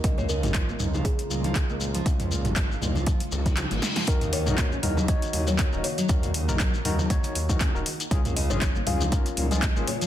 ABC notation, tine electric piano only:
X:1
M:4/4
L:1/16
Q:"Swing 16ths" 1/4=119
K:Ebm
V:1 name="Tine electric piano"
z16 | z16 | [EGB]2 z [EGB]2 z [EGB] z [EGd]3 [EGB] z [EGB] z2 | [EGB]2 z [EGB]2 z [EGB] z [EGd]3 [EGB] z [EGB] z2 |
[DFA]2 z [DFA]2 z [DFA] z [DFB]3 [DFA] z [DFA] z2 |]